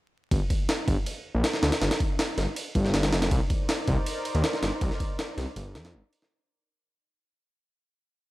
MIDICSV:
0, 0, Header, 1, 4, 480
1, 0, Start_track
1, 0, Tempo, 375000
1, 402, Time_signature, 4, 2, 24, 8
1, 10627, End_track
2, 0, Start_track
2, 0, Title_t, "Analog synth pad"
2, 0, Program_c, 0, 89
2, 4242, Note_on_c, 0, 70, 77
2, 4242, Note_on_c, 0, 72, 75
2, 4242, Note_on_c, 0, 74, 91
2, 4243, Note_on_c, 0, 63, 83
2, 8043, Note_off_c, 0, 70, 0
2, 8043, Note_off_c, 0, 72, 0
2, 8043, Note_off_c, 0, 74, 0
2, 8044, Note_off_c, 0, 63, 0
2, 10627, End_track
3, 0, Start_track
3, 0, Title_t, "Detuned saw bass"
3, 0, Program_c, 1, 39
3, 401, Note_on_c, 1, 31, 104
3, 512, Note_off_c, 1, 31, 0
3, 1121, Note_on_c, 1, 31, 88
3, 1232, Note_off_c, 1, 31, 0
3, 1723, Note_on_c, 1, 34, 95
3, 1829, Note_off_c, 1, 34, 0
3, 2081, Note_on_c, 1, 38, 104
3, 2191, Note_off_c, 1, 38, 0
3, 2322, Note_on_c, 1, 31, 104
3, 2432, Note_off_c, 1, 31, 0
3, 3041, Note_on_c, 1, 31, 89
3, 3151, Note_off_c, 1, 31, 0
3, 3522, Note_on_c, 1, 31, 86
3, 4002, Note_on_c, 1, 29, 96
3, 4022, Note_off_c, 1, 31, 0
3, 4219, Note_off_c, 1, 29, 0
3, 4242, Note_on_c, 1, 36, 101
3, 4352, Note_off_c, 1, 36, 0
3, 4961, Note_on_c, 1, 36, 88
3, 5072, Note_off_c, 1, 36, 0
3, 5563, Note_on_c, 1, 39, 94
3, 5670, Note_off_c, 1, 39, 0
3, 5920, Note_on_c, 1, 31, 107
3, 6031, Note_off_c, 1, 31, 0
3, 6162, Note_on_c, 1, 36, 107
3, 6272, Note_off_c, 1, 36, 0
3, 6879, Note_on_c, 1, 36, 90
3, 6990, Note_off_c, 1, 36, 0
3, 7118, Note_on_c, 1, 31, 107
3, 7358, Note_on_c, 1, 41, 93
3, 7377, Note_off_c, 1, 31, 0
3, 7598, Note_on_c, 1, 31, 107
3, 7617, Note_off_c, 1, 41, 0
3, 7710, Note_off_c, 1, 31, 0
3, 10627, End_track
4, 0, Start_track
4, 0, Title_t, "Drums"
4, 402, Note_on_c, 9, 36, 120
4, 402, Note_on_c, 9, 51, 91
4, 530, Note_off_c, 9, 36, 0
4, 530, Note_off_c, 9, 51, 0
4, 642, Note_on_c, 9, 36, 99
4, 643, Note_on_c, 9, 51, 70
4, 770, Note_off_c, 9, 36, 0
4, 771, Note_off_c, 9, 51, 0
4, 881, Note_on_c, 9, 38, 122
4, 881, Note_on_c, 9, 51, 93
4, 1009, Note_off_c, 9, 38, 0
4, 1009, Note_off_c, 9, 51, 0
4, 1122, Note_on_c, 9, 36, 98
4, 1122, Note_on_c, 9, 51, 70
4, 1250, Note_off_c, 9, 36, 0
4, 1250, Note_off_c, 9, 51, 0
4, 1362, Note_on_c, 9, 51, 86
4, 1490, Note_off_c, 9, 51, 0
4, 1842, Note_on_c, 9, 38, 115
4, 1842, Note_on_c, 9, 51, 86
4, 1965, Note_off_c, 9, 38, 0
4, 1965, Note_on_c, 9, 38, 55
4, 1970, Note_off_c, 9, 51, 0
4, 2083, Note_off_c, 9, 38, 0
4, 2083, Note_on_c, 9, 38, 102
4, 2083, Note_on_c, 9, 51, 84
4, 2204, Note_off_c, 9, 38, 0
4, 2204, Note_off_c, 9, 51, 0
4, 2204, Note_on_c, 9, 38, 109
4, 2204, Note_on_c, 9, 51, 80
4, 2323, Note_off_c, 9, 38, 0
4, 2323, Note_off_c, 9, 51, 0
4, 2323, Note_on_c, 9, 38, 106
4, 2323, Note_on_c, 9, 51, 84
4, 2446, Note_off_c, 9, 38, 0
4, 2446, Note_off_c, 9, 51, 0
4, 2446, Note_on_c, 9, 38, 107
4, 2446, Note_on_c, 9, 51, 78
4, 2563, Note_on_c, 9, 36, 99
4, 2564, Note_off_c, 9, 51, 0
4, 2564, Note_on_c, 9, 51, 70
4, 2574, Note_off_c, 9, 38, 0
4, 2691, Note_off_c, 9, 36, 0
4, 2692, Note_off_c, 9, 51, 0
4, 2803, Note_on_c, 9, 38, 124
4, 2803, Note_on_c, 9, 51, 94
4, 2931, Note_off_c, 9, 38, 0
4, 2931, Note_off_c, 9, 51, 0
4, 3043, Note_on_c, 9, 38, 55
4, 3043, Note_on_c, 9, 51, 72
4, 3171, Note_off_c, 9, 38, 0
4, 3171, Note_off_c, 9, 51, 0
4, 3281, Note_on_c, 9, 51, 91
4, 3409, Note_off_c, 9, 51, 0
4, 3522, Note_on_c, 9, 36, 92
4, 3522, Note_on_c, 9, 51, 67
4, 3644, Note_on_c, 9, 38, 39
4, 3650, Note_off_c, 9, 36, 0
4, 3650, Note_off_c, 9, 51, 0
4, 3760, Note_off_c, 9, 38, 0
4, 3760, Note_on_c, 9, 38, 101
4, 3760, Note_on_c, 9, 51, 79
4, 3882, Note_off_c, 9, 38, 0
4, 3882, Note_off_c, 9, 51, 0
4, 3882, Note_on_c, 9, 38, 105
4, 3882, Note_on_c, 9, 51, 80
4, 4000, Note_off_c, 9, 38, 0
4, 4000, Note_off_c, 9, 51, 0
4, 4000, Note_on_c, 9, 38, 109
4, 4000, Note_on_c, 9, 51, 82
4, 4123, Note_off_c, 9, 38, 0
4, 4123, Note_off_c, 9, 51, 0
4, 4123, Note_on_c, 9, 38, 108
4, 4123, Note_on_c, 9, 51, 88
4, 4241, Note_off_c, 9, 51, 0
4, 4241, Note_on_c, 9, 51, 95
4, 4242, Note_on_c, 9, 36, 118
4, 4251, Note_off_c, 9, 38, 0
4, 4369, Note_off_c, 9, 51, 0
4, 4370, Note_off_c, 9, 36, 0
4, 4480, Note_on_c, 9, 51, 67
4, 4482, Note_on_c, 9, 36, 97
4, 4608, Note_off_c, 9, 51, 0
4, 4610, Note_off_c, 9, 36, 0
4, 4721, Note_on_c, 9, 38, 124
4, 4721, Note_on_c, 9, 51, 98
4, 4849, Note_off_c, 9, 38, 0
4, 4849, Note_off_c, 9, 51, 0
4, 4960, Note_on_c, 9, 51, 70
4, 4962, Note_on_c, 9, 36, 95
4, 5088, Note_off_c, 9, 51, 0
4, 5090, Note_off_c, 9, 36, 0
4, 5202, Note_on_c, 9, 51, 94
4, 5330, Note_off_c, 9, 51, 0
4, 5442, Note_on_c, 9, 51, 70
4, 5564, Note_off_c, 9, 51, 0
4, 5564, Note_on_c, 9, 51, 45
4, 5680, Note_off_c, 9, 51, 0
4, 5680, Note_on_c, 9, 38, 116
4, 5680, Note_on_c, 9, 51, 86
4, 5804, Note_off_c, 9, 38, 0
4, 5804, Note_on_c, 9, 38, 55
4, 5808, Note_off_c, 9, 51, 0
4, 5922, Note_off_c, 9, 38, 0
4, 5922, Note_on_c, 9, 38, 107
4, 5922, Note_on_c, 9, 51, 84
4, 6050, Note_off_c, 9, 38, 0
4, 6050, Note_off_c, 9, 51, 0
4, 6161, Note_on_c, 9, 51, 91
4, 6162, Note_on_c, 9, 36, 117
4, 6285, Note_on_c, 9, 38, 37
4, 6289, Note_off_c, 9, 51, 0
4, 6290, Note_off_c, 9, 36, 0
4, 6402, Note_on_c, 9, 36, 100
4, 6402, Note_on_c, 9, 51, 71
4, 6413, Note_off_c, 9, 38, 0
4, 6530, Note_off_c, 9, 36, 0
4, 6530, Note_off_c, 9, 51, 0
4, 6642, Note_on_c, 9, 38, 121
4, 6642, Note_on_c, 9, 51, 97
4, 6770, Note_off_c, 9, 38, 0
4, 6770, Note_off_c, 9, 51, 0
4, 6882, Note_on_c, 9, 38, 55
4, 6882, Note_on_c, 9, 51, 69
4, 7010, Note_off_c, 9, 38, 0
4, 7010, Note_off_c, 9, 51, 0
4, 7120, Note_on_c, 9, 51, 94
4, 7248, Note_off_c, 9, 51, 0
4, 7361, Note_on_c, 9, 38, 107
4, 7361, Note_on_c, 9, 51, 83
4, 7485, Note_off_c, 9, 38, 0
4, 7485, Note_off_c, 9, 51, 0
4, 7485, Note_on_c, 9, 38, 101
4, 7485, Note_on_c, 9, 51, 84
4, 7613, Note_off_c, 9, 38, 0
4, 7613, Note_off_c, 9, 51, 0
4, 7842, Note_on_c, 9, 51, 72
4, 7964, Note_on_c, 9, 38, 54
4, 7970, Note_off_c, 9, 51, 0
4, 8092, Note_off_c, 9, 38, 0
4, 10627, End_track
0, 0, End_of_file